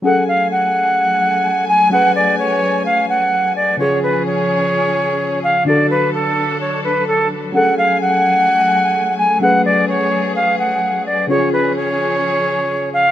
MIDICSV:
0, 0, Header, 1, 4, 480
1, 0, Start_track
1, 0, Key_signature, 3, "minor"
1, 0, Tempo, 468750
1, 46, Time_signature, 4, 2, 24, 8
1, 13430, End_track
2, 0, Start_track
2, 0, Title_t, "Flute"
2, 0, Program_c, 0, 73
2, 47, Note_on_c, 0, 78, 89
2, 251, Note_off_c, 0, 78, 0
2, 287, Note_on_c, 0, 77, 80
2, 491, Note_off_c, 0, 77, 0
2, 525, Note_on_c, 0, 78, 85
2, 1684, Note_off_c, 0, 78, 0
2, 1724, Note_on_c, 0, 80, 86
2, 1929, Note_off_c, 0, 80, 0
2, 1966, Note_on_c, 0, 78, 87
2, 2170, Note_off_c, 0, 78, 0
2, 2206, Note_on_c, 0, 74, 83
2, 2410, Note_off_c, 0, 74, 0
2, 2445, Note_on_c, 0, 73, 89
2, 2897, Note_off_c, 0, 73, 0
2, 2925, Note_on_c, 0, 77, 85
2, 3130, Note_off_c, 0, 77, 0
2, 3165, Note_on_c, 0, 78, 76
2, 3617, Note_off_c, 0, 78, 0
2, 3646, Note_on_c, 0, 74, 81
2, 3850, Note_off_c, 0, 74, 0
2, 3886, Note_on_c, 0, 73, 85
2, 4090, Note_off_c, 0, 73, 0
2, 4126, Note_on_c, 0, 71, 75
2, 4330, Note_off_c, 0, 71, 0
2, 4366, Note_on_c, 0, 73, 91
2, 5525, Note_off_c, 0, 73, 0
2, 5567, Note_on_c, 0, 77, 86
2, 5771, Note_off_c, 0, 77, 0
2, 5805, Note_on_c, 0, 74, 75
2, 6009, Note_off_c, 0, 74, 0
2, 6046, Note_on_c, 0, 71, 82
2, 6250, Note_off_c, 0, 71, 0
2, 6286, Note_on_c, 0, 69, 85
2, 6737, Note_off_c, 0, 69, 0
2, 6765, Note_on_c, 0, 73, 82
2, 6969, Note_off_c, 0, 73, 0
2, 7005, Note_on_c, 0, 71, 76
2, 7209, Note_off_c, 0, 71, 0
2, 7247, Note_on_c, 0, 69, 90
2, 7450, Note_off_c, 0, 69, 0
2, 7727, Note_on_c, 0, 78, 89
2, 7930, Note_off_c, 0, 78, 0
2, 7967, Note_on_c, 0, 77, 81
2, 8170, Note_off_c, 0, 77, 0
2, 8204, Note_on_c, 0, 78, 88
2, 9364, Note_off_c, 0, 78, 0
2, 9404, Note_on_c, 0, 80, 85
2, 9609, Note_off_c, 0, 80, 0
2, 9645, Note_on_c, 0, 78, 89
2, 9850, Note_off_c, 0, 78, 0
2, 9886, Note_on_c, 0, 74, 87
2, 10090, Note_off_c, 0, 74, 0
2, 10124, Note_on_c, 0, 73, 91
2, 10576, Note_off_c, 0, 73, 0
2, 10605, Note_on_c, 0, 77, 83
2, 10809, Note_off_c, 0, 77, 0
2, 10845, Note_on_c, 0, 78, 77
2, 11297, Note_off_c, 0, 78, 0
2, 11326, Note_on_c, 0, 74, 81
2, 11530, Note_off_c, 0, 74, 0
2, 11566, Note_on_c, 0, 73, 90
2, 11770, Note_off_c, 0, 73, 0
2, 11807, Note_on_c, 0, 71, 77
2, 12010, Note_off_c, 0, 71, 0
2, 12046, Note_on_c, 0, 73, 92
2, 13205, Note_off_c, 0, 73, 0
2, 13247, Note_on_c, 0, 77, 89
2, 13430, Note_off_c, 0, 77, 0
2, 13430, End_track
3, 0, Start_track
3, 0, Title_t, "Synth keys"
3, 0, Program_c, 1, 88
3, 22, Note_on_c, 1, 54, 69
3, 37, Note_on_c, 1, 61, 64
3, 53, Note_on_c, 1, 68, 60
3, 68, Note_on_c, 1, 69, 69
3, 248, Control_c, 1, 64, 127
3, 1915, Note_off_c, 1, 54, 0
3, 1923, Note_off_c, 1, 61, 0
3, 1931, Note_off_c, 1, 68, 0
3, 1939, Note_off_c, 1, 69, 0
3, 1942, Note_on_c, 1, 54, 69
3, 1958, Note_on_c, 1, 61, 61
3, 1974, Note_on_c, 1, 68, 61
3, 1989, Note_on_c, 1, 71, 74
3, 3835, Note_off_c, 1, 54, 0
3, 3843, Note_off_c, 1, 61, 0
3, 3851, Note_off_c, 1, 68, 0
3, 3859, Note_off_c, 1, 71, 0
3, 3861, Note_on_c, 1, 49, 62
3, 3876, Note_on_c, 1, 61, 59
3, 3892, Note_on_c, 1, 65, 64
3, 3897, Control_c, 1, 64, 0
3, 3908, Note_on_c, 1, 68, 70
3, 4093, Control_c, 1, 64, 127
3, 5755, Note_off_c, 1, 49, 0
3, 5763, Note_off_c, 1, 61, 0
3, 5771, Note_off_c, 1, 65, 0
3, 5779, Note_off_c, 1, 68, 0
3, 5784, Note_on_c, 1, 50, 70
3, 5800, Note_on_c, 1, 62, 61
3, 5816, Note_on_c, 1, 66, 62
3, 5820, Control_c, 1, 64, 0
3, 5831, Note_on_c, 1, 69, 76
3, 6009, Control_c, 1, 64, 127
3, 7676, Note_off_c, 1, 50, 0
3, 7684, Note_off_c, 1, 62, 0
3, 7692, Note_off_c, 1, 66, 0
3, 7700, Note_off_c, 1, 69, 0
3, 7702, Note_on_c, 1, 54, 70
3, 7717, Note_on_c, 1, 61, 64
3, 7733, Note_on_c, 1, 68, 60
3, 7741, Control_c, 1, 64, 0
3, 7748, Note_on_c, 1, 69, 69
3, 7913, Control_c, 1, 64, 127
3, 9595, Note_off_c, 1, 54, 0
3, 9603, Note_off_c, 1, 61, 0
3, 9611, Note_off_c, 1, 68, 0
3, 9619, Note_off_c, 1, 69, 0
3, 9622, Note_on_c, 1, 54, 69
3, 9638, Note_on_c, 1, 61, 63
3, 9653, Note_on_c, 1, 68, 62
3, 9669, Note_on_c, 1, 71, 75
3, 11515, Note_off_c, 1, 54, 0
3, 11523, Note_off_c, 1, 61, 0
3, 11531, Note_off_c, 1, 68, 0
3, 11539, Note_off_c, 1, 71, 0
3, 11541, Note_on_c, 1, 49, 64
3, 11557, Note_on_c, 1, 61, 57
3, 11572, Note_on_c, 1, 65, 65
3, 11579, Control_c, 1, 64, 0
3, 11588, Note_on_c, 1, 68, 69
3, 11786, Control_c, 1, 64, 127
3, 13430, Note_off_c, 1, 49, 0
3, 13430, Note_off_c, 1, 61, 0
3, 13430, Note_off_c, 1, 65, 0
3, 13430, Note_off_c, 1, 68, 0
3, 13430, End_track
4, 0, Start_track
4, 0, Title_t, "String section"
4, 0, Program_c, 2, 48
4, 45, Note_on_c, 2, 54, 74
4, 45, Note_on_c, 2, 57, 67
4, 45, Note_on_c, 2, 80, 80
4, 3847, Note_off_c, 2, 54, 0
4, 3847, Note_off_c, 2, 57, 0
4, 3847, Note_off_c, 2, 80, 0
4, 3885, Note_on_c, 2, 53, 76
4, 3885, Note_on_c, 2, 61, 67
4, 3885, Note_on_c, 2, 68, 84
4, 5786, Note_off_c, 2, 53, 0
4, 5786, Note_off_c, 2, 61, 0
4, 5786, Note_off_c, 2, 68, 0
4, 5805, Note_on_c, 2, 62, 68
4, 5805, Note_on_c, 2, 69, 81
4, 5806, Note_on_c, 2, 54, 74
4, 7706, Note_off_c, 2, 69, 0
4, 7707, Note_off_c, 2, 62, 0
4, 7726, Note_on_c, 2, 57, 69
4, 7726, Note_on_c, 2, 80, 81
4, 9627, Note_off_c, 2, 80, 0
4, 9645, Note_on_c, 2, 68, 81
4, 11525, Note_off_c, 2, 54, 0
4, 11528, Note_off_c, 2, 57, 0
4, 11546, Note_off_c, 2, 68, 0
4, 11566, Note_on_c, 2, 53, 72
4, 11566, Note_on_c, 2, 61, 68
4, 11566, Note_on_c, 2, 68, 83
4, 13430, Note_off_c, 2, 53, 0
4, 13430, Note_off_c, 2, 61, 0
4, 13430, Note_off_c, 2, 68, 0
4, 13430, End_track
0, 0, End_of_file